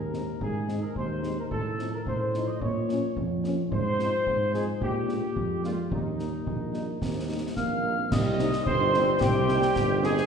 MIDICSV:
0, 0, Header, 1, 8, 480
1, 0, Start_track
1, 0, Tempo, 549451
1, 359, Time_signature, 2, 2, 24, 8
1, 8963, End_track
2, 0, Start_track
2, 0, Title_t, "Piccolo"
2, 0, Program_c, 0, 72
2, 6610, Note_on_c, 0, 89, 73
2, 7097, Note_on_c, 0, 87, 79
2, 7110, Note_off_c, 0, 89, 0
2, 7560, Note_off_c, 0, 87, 0
2, 7565, Note_on_c, 0, 84, 87
2, 8011, Note_off_c, 0, 84, 0
2, 8047, Note_on_c, 0, 79, 89
2, 8729, Note_off_c, 0, 79, 0
2, 8769, Note_on_c, 0, 80, 88
2, 8963, Note_off_c, 0, 80, 0
2, 8963, End_track
3, 0, Start_track
3, 0, Title_t, "Trumpet section"
3, 0, Program_c, 1, 61
3, 0, Note_on_c, 1, 70, 58
3, 357, Note_off_c, 1, 70, 0
3, 360, Note_on_c, 1, 68, 65
3, 695, Note_off_c, 1, 68, 0
3, 720, Note_on_c, 1, 70, 60
3, 840, Note_off_c, 1, 70, 0
3, 844, Note_on_c, 1, 72, 65
3, 1178, Note_off_c, 1, 72, 0
3, 1199, Note_on_c, 1, 70, 51
3, 1254, Note_off_c, 1, 70, 0
3, 1313, Note_on_c, 1, 69, 76
3, 1652, Note_off_c, 1, 69, 0
3, 1685, Note_on_c, 1, 70, 68
3, 1738, Note_off_c, 1, 70, 0
3, 1799, Note_on_c, 1, 72, 67
3, 2136, Note_off_c, 1, 72, 0
3, 2165, Note_on_c, 1, 75, 70
3, 2280, Note_on_c, 1, 73, 73
3, 2284, Note_off_c, 1, 75, 0
3, 2762, Note_off_c, 1, 73, 0
3, 3239, Note_on_c, 1, 72, 98
3, 3928, Note_off_c, 1, 72, 0
3, 3961, Note_on_c, 1, 68, 75
3, 4070, Note_off_c, 1, 68, 0
3, 4209, Note_on_c, 1, 67, 77
3, 4893, Note_off_c, 1, 67, 0
3, 4931, Note_on_c, 1, 65, 61
3, 5038, Note_off_c, 1, 65, 0
3, 5168, Note_on_c, 1, 63, 55
3, 6572, Note_off_c, 1, 63, 0
3, 6599, Note_on_c, 1, 77, 77
3, 7049, Note_off_c, 1, 77, 0
3, 7088, Note_on_c, 1, 75, 93
3, 7559, Note_on_c, 1, 72, 91
3, 7566, Note_off_c, 1, 75, 0
3, 8007, Note_off_c, 1, 72, 0
3, 8035, Note_on_c, 1, 67, 101
3, 8758, Note_off_c, 1, 67, 0
3, 8760, Note_on_c, 1, 68, 107
3, 8963, Note_off_c, 1, 68, 0
3, 8963, End_track
4, 0, Start_track
4, 0, Title_t, "French horn section"
4, 0, Program_c, 2, 60
4, 109, Note_on_c, 2, 60, 42
4, 111, Note_on_c, 2, 56, 35
4, 111, Note_on_c, 2, 63, 38
4, 198, Note_off_c, 2, 60, 0
4, 199, Note_off_c, 2, 56, 0
4, 200, Note_off_c, 2, 63, 0
4, 597, Note_on_c, 2, 56, 42
4, 597, Note_on_c, 2, 63, 41
4, 599, Note_on_c, 2, 60, 36
4, 684, Note_off_c, 2, 56, 0
4, 684, Note_off_c, 2, 63, 0
4, 686, Note_off_c, 2, 60, 0
4, 1071, Note_on_c, 2, 60, 38
4, 1073, Note_on_c, 2, 56, 40
4, 1073, Note_on_c, 2, 63, 43
4, 1160, Note_off_c, 2, 60, 0
4, 1161, Note_off_c, 2, 56, 0
4, 1161, Note_off_c, 2, 63, 0
4, 1550, Note_on_c, 2, 53, 42
4, 1551, Note_on_c, 2, 60, 45
4, 1551, Note_on_c, 2, 63, 43
4, 1639, Note_off_c, 2, 53, 0
4, 1640, Note_off_c, 2, 60, 0
4, 1640, Note_off_c, 2, 63, 0
4, 2041, Note_on_c, 2, 53, 45
4, 2044, Note_on_c, 2, 60, 45
4, 2045, Note_on_c, 2, 63, 41
4, 2128, Note_off_c, 2, 53, 0
4, 2130, Note_off_c, 2, 60, 0
4, 2131, Note_off_c, 2, 63, 0
4, 2520, Note_on_c, 2, 58, 46
4, 2521, Note_on_c, 2, 61, 48
4, 2523, Note_on_c, 2, 53, 49
4, 2607, Note_off_c, 2, 58, 0
4, 2608, Note_off_c, 2, 61, 0
4, 2610, Note_off_c, 2, 53, 0
4, 3003, Note_on_c, 2, 53, 52
4, 3003, Note_on_c, 2, 58, 44
4, 3003, Note_on_c, 2, 61, 47
4, 3089, Note_off_c, 2, 58, 0
4, 3089, Note_off_c, 2, 61, 0
4, 3090, Note_off_c, 2, 53, 0
4, 3480, Note_on_c, 2, 60, 51
4, 3481, Note_on_c, 2, 53, 55
4, 3481, Note_on_c, 2, 63, 46
4, 3568, Note_off_c, 2, 60, 0
4, 3568, Note_off_c, 2, 63, 0
4, 3569, Note_off_c, 2, 53, 0
4, 3959, Note_on_c, 2, 53, 46
4, 3959, Note_on_c, 2, 60, 49
4, 3959, Note_on_c, 2, 63, 46
4, 4047, Note_off_c, 2, 53, 0
4, 4047, Note_off_c, 2, 60, 0
4, 4047, Note_off_c, 2, 63, 0
4, 4436, Note_on_c, 2, 62, 43
4, 4439, Note_on_c, 2, 56, 49
4, 4439, Note_on_c, 2, 58, 48
4, 4525, Note_off_c, 2, 62, 0
4, 4527, Note_off_c, 2, 56, 0
4, 4527, Note_off_c, 2, 58, 0
4, 4914, Note_on_c, 2, 56, 42
4, 4917, Note_on_c, 2, 62, 40
4, 4918, Note_on_c, 2, 58, 41
4, 5003, Note_off_c, 2, 56, 0
4, 5005, Note_off_c, 2, 62, 0
4, 5007, Note_off_c, 2, 58, 0
4, 5395, Note_on_c, 2, 55, 39
4, 5398, Note_on_c, 2, 58, 41
4, 5398, Note_on_c, 2, 63, 35
4, 5484, Note_off_c, 2, 55, 0
4, 5487, Note_off_c, 2, 58, 0
4, 5487, Note_off_c, 2, 63, 0
4, 5881, Note_on_c, 2, 58, 34
4, 5882, Note_on_c, 2, 55, 31
4, 5882, Note_on_c, 2, 63, 37
4, 5969, Note_off_c, 2, 58, 0
4, 5970, Note_off_c, 2, 55, 0
4, 5970, Note_off_c, 2, 63, 0
4, 6361, Note_on_c, 2, 63, 35
4, 6362, Note_on_c, 2, 55, 37
4, 6363, Note_on_c, 2, 58, 34
4, 6449, Note_off_c, 2, 63, 0
4, 6450, Note_off_c, 2, 55, 0
4, 6450, Note_off_c, 2, 58, 0
4, 6845, Note_on_c, 2, 58, 33
4, 6845, Note_on_c, 2, 63, 33
4, 6846, Note_on_c, 2, 55, 33
4, 6931, Note_off_c, 2, 63, 0
4, 6932, Note_off_c, 2, 58, 0
4, 6933, Note_off_c, 2, 55, 0
4, 7324, Note_on_c, 2, 55, 60
4, 7325, Note_on_c, 2, 60, 68
4, 7326, Note_on_c, 2, 63, 71
4, 7410, Note_off_c, 2, 55, 0
4, 7412, Note_off_c, 2, 60, 0
4, 7412, Note_off_c, 2, 63, 0
4, 7804, Note_on_c, 2, 60, 68
4, 7805, Note_on_c, 2, 55, 61
4, 7806, Note_on_c, 2, 63, 61
4, 7891, Note_off_c, 2, 55, 0
4, 7891, Note_off_c, 2, 60, 0
4, 7892, Note_off_c, 2, 63, 0
4, 8285, Note_on_c, 2, 55, 72
4, 8285, Note_on_c, 2, 60, 62
4, 8285, Note_on_c, 2, 63, 63
4, 8371, Note_off_c, 2, 55, 0
4, 8371, Note_off_c, 2, 60, 0
4, 8371, Note_off_c, 2, 63, 0
4, 8756, Note_on_c, 2, 55, 63
4, 8758, Note_on_c, 2, 63, 61
4, 8759, Note_on_c, 2, 60, 69
4, 8844, Note_off_c, 2, 55, 0
4, 8845, Note_off_c, 2, 63, 0
4, 8846, Note_off_c, 2, 60, 0
4, 8963, End_track
5, 0, Start_track
5, 0, Title_t, "Euphonium"
5, 0, Program_c, 3, 58
5, 5647, Note_on_c, 3, 58, 49
5, 6094, Note_off_c, 3, 58, 0
5, 6128, Note_on_c, 3, 60, 49
5, 6574, Note_off_c, 3, 60, 0
5, 6611, Note_on_c, 3, 58, 44
5, 6973, Note_on_c, 3, 60, 39
5, 6987, Note_off_c, 3, 58, 0
5, 7090, Note_off_c, 3, 60, 0
5, 8963, End_track
6, 0, Start_track
6, 0, Title_t, "Trombone section"
6, 0, Program_c, 4, 61
6, 7086, Note_on_c, 4, 55, 75
6, 7086, Note_on_c, 4, 60, 73
6, 8963, Note_off_c, 4, 55, 0
6, 8963, Note_off_c, 4, 60, 0
6, 8963, End_track
7, 0, Start_track
7, 0, Title_t, "Tuba"
7, 0, Program_c, 5, 58
7, 0, Note_on_c, 5, 39, 49
7, 277, Note_off_c, 5, 39, 0
7, 353, Note_on_c, 5, 44, 52
7, 757, Note_off_c, 5, 44, 0
7, 833, Note_on_c, 5, 39, 48
7, 1192, Note_off_c, 5, 39, 0
7, 1313, Note_on_c, 5, 45, 54
7, 1717, Note_off_c, 5, 45, 0
7, 1797, Note_on_c, 5, 45, 55
7, 2200, Note_off_c, 5, 45, 0
7, 2277, Note_on_c, 5, 46, 64
7, 2680, Note_off_c, 5, 46, 0
7, 2758, Note_on_c, 5, 41, 58
7, 3161, Note_off_c, 5, 41, 0
7, 3237, Note_on_c, 5, 44, 62
7, 3641, Note_off_c, 5, 44, 0
7, 3719, Note_on_c, 5, 44, 64
7, 4122, Note_off_c, 5, 44, 0
7, 4201, Note_on_c, 5, 46, 65
7, 4604, Note_off_c, 5, 46, 0
7, 4681, Note_on_c, 5, 41, 49
7, 5084, Note_off_c, 5, 41, 0
7, 5161, Note_on_c, 5, 39, 51
7, 5564, Note_off_c, 5, 39, 0
7, 5641, Note_on_c, 5, 34, 39
7, 6044, Note_off_c, 5, 34, 0
7, 6122, Note_on_c, 5, 39, 46
7, 6524, Note_off_c, 5, 39, 0
7, 6604, Note_on_c, 5, 34, 52
7, 7005, Note_off_c, 5, 34, 0
7, 7081, Note_on_c, 5, 36, 83
7, 7446, Note_off_c, 5, 36, 0
7, 7566, Note_on_c, 5, 31, 80
7, 7965, Note_off_c, 5, 31, 0
7, 8044, Note_on_c, 5, 36, 88
7, 8443, Note_off_c, 5, 36, 0
7, 8522, Note_on_c, 5, 31, 81
7, 8922, Note_off_c, 5, 31, 0
7, 8963, End_track
8, 0, Start_track
8, 0, Title_t, "Drums"
8, 119, Note_on_c, 9, 38, 29
8, 207, Note_off_c, 9, 38, 0
8, 358, Note_on_c, 9, 35, 73
8, 445, Note_off_c, 9, 35, 0
8, 599, Note_on_c, 9, 38, 30
8, 687, Note_off_c, 9, 38, 0
8, 837, Note_on_c, 9, 35, 61
8, 925, Note_off_c, 9, 35, 0
8, 1079, Note_on_c, 9, 38, 31
8, 1166, Note_off_c, 9, 38, 0
8, 1320, Note_on_c, 9, 35, 75
8, 1408, Note_off_c, 9, 35, 0
8, 1565, Note_on_c, 9, 38, 34
8, 1652, Note_off_c, 9, 38, 0
8, 1804, Note_on_c, 9, 35, 62
8, 1891, Note_off_c, 9, 35, 0
8, 2044, Note_on_c, 9, 38, 29
8, 2132, Note_off_c, 9, 38, 0
8, 2283, Note_on_c, 9, 35, 65
8, 2371, Note_off_c, 9, 35, 0
8, 2526, Note_on_c, 9, 38, 32
8, 2613, Note_off_c, 9, 38, 0
8, 2766, Note_on_c, 9, 35, 66
8, 2853, Note_off_c, 9, 35, 0
8, 3006, Note_on_c, 9, 38, 31
8, 3094, Note_off_c, 9, 38, 0
8, 3248, Note_on_c, 9, 35, 73
8, 3335, Note_off_c, 9, 35, 0
8, 3489, Note_on_c, 9, 38, 33
8, 3576, Note_off_c, 9, 38, 0
8, 3727, Note_on_c, 9, 35, 61
8, 3815, Note_off_c, 9, 35, 0
8, 3968, Note_on_c, 9, 38, 30
8, 4056, Note_off_c, 9, 38, 0
8, 4207, Note_on_c, 9, 35, 70
8, 4295, Note_off_c, 9, 35, 0
8, 4446, Note_on_c, 9, 38, 31
8, 4533, Note_off_c, 9, 38, 0
8, 4686, Note_on_c, 9, 35, 64
8, 4773, Note_off_c, 9, 35, 0
8, 4928, Note_on_c, 9, 38, 31
8, 5016, Note_off_c, 9, 38, 0
8, 5168, Note_on_c, 9, 35, 74
8, 5255, Note_off_c, 9, 35, 0
8, 5411, Note_on_c, 9, 38, 28
8, 5498, Note_off_c, 9, 38, 0
8, 5650, Note_on_c, 9, 35, 60
8, 5738, Note_off_c, 9, 35, 0
8, 5886, Note_on_c, 9, 38, 28
8, 5974, Note_off_c, 9, 38, 0
8, 6130, Note_on_c, 9, 35, 65
8, 6130, Note_on_c, 9, 38, 52
8, 6217, Note_off_c, 9, 35, 0
8, 6217, Note_off_c, 9, 38, 0
8, 6610, Note_on_c, 9, 35, 59
8, 6610, Note_on_c, 9, 38, 44
8, 6697, Note_off_c, 9, 35, 0
8, 6697, Note_off_c, 9, 38, 0
8, 7092, Note_on_c, 9, 35, 88
8, 7092, Note_on_c, 9, 38, 81
8, 7092, Note_on_c, 9, 49, 57
8, 7180, Note_off_c, 9, 35, 0
8, 7180, Note_off_c, 9, 38, 0
8, 7180, Note_off_c, 9, 49, 0
8, 7330, Note_on_c, 9, 38, 57
8, 7417, Note_off_c, 9, 38, 0
8, 7449, Note_on_c, 9, 38, 62
8, 7536, Note_off_c, 9, 38, 0
8, 7569, Note_on_c, 9, 35, 82
8, 7656, Note_off_c, 9, 35, 0
8, 7809, Note_on_c, 9, 38, 46
8, 7896, Note_off_c, 9, 38, 0
8, 8046, Note_on_c, 9, 35, 90
8, 8046, Note_on_c, 9, 38, 73
8, 8134, Note_off_c, 9, 35, 0
8, 8134, Note_off_c, 9, 38, 0
8, 8287, Note_on_c, 9, 38, 49
8, 8375, Note_off_c, 9, 38, 0
8, 8406, Note_on_c, 9, 38, 59
8, 8493, Note_off_c, 9, 38, 0
8, 8526, Note_on_c, 9, 35, 78
8, 8526, Note_on_c, 9, 38, 71
8, 8614, Note_off_c, 9, 35, 0
8, 8614, Note_off_c, 9, 38, 0
8, 8767, Note_on_c, 9, 38, 52
8, 8854, Note_off_c, 9, 38, 0
8, 8888, Note_on_c, 9, 38, 52
8, 8963, Note_off_c, 9, 38, 0
8, 8963, End_track
0, 0, End_of_file